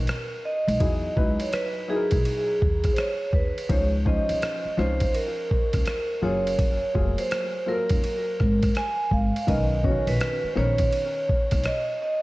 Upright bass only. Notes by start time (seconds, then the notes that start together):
0.67 B1
0.80 E2
1.17 C#2
2.12 B1
2.62 D#2
3.33 D#2
3.70 C#2
4.29 C2
4.65 muted upright bass stroke
4.78 C2
5.74 C#2
6.22 F#1
6.95 F1
7.90 F1
8.40 G#1
9.11 G#1
9.48 B1
10.07 A#1
10.43 muted upright bass stroke
10.56 A#1
11.52 B1